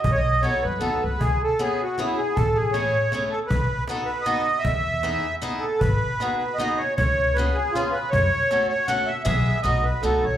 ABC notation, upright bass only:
X:1
M:3/4
L:1/8
Q:"Swing" 1/4=156
K:Bmix
V:1 name="Upright bass" clef=bass
B,,,3 F,, D,, C,, | C,, z4 z | A,,,4 z2 | B,,, z4 z |
E,,4 z2 | G,,, z4 z | C,,4 z2 | F,, z4 z |
B,,,2 B,,,2 C,, B,,, |]